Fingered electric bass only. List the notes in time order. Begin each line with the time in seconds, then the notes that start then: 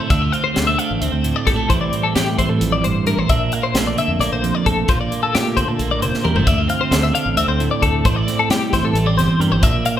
0.10 D2
0.57 D2
0.91 A1
1.02 D2
1.12 D2
1.47 A#1
1.69 A1
2.16 A2
2.50 A2
2.61 A1
2.84 G1
3.06 G2
3.18 A1
3.29 A#1
3.74 A#1
4.08 F2
4.19 A#1
4.32 A#1
4.66 A#1
4.88 A#1
5.35 A#2
5.68 A#2
5.79 A#1
6.02 F1
6.25 E2
6.35 F1
6.47 D2
6.91 D2
7.26 A1
7.37 D2
7.48 D2
7.82 D2
8.05 A1
8.50 A2
8.83 A2
8.93 A1
9.17 G1
9.40 G2
9.52 G1
9.62 A#1